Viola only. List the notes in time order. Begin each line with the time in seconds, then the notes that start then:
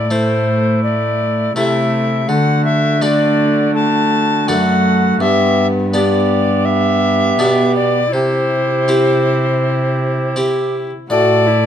0.10 A3
1.56 A3
2.28 A3
3.01 A3
3.74 A3
4.48 A3
5.20 B3
5.93 B3
8.13 E4
11.10 F#4
11.46 E4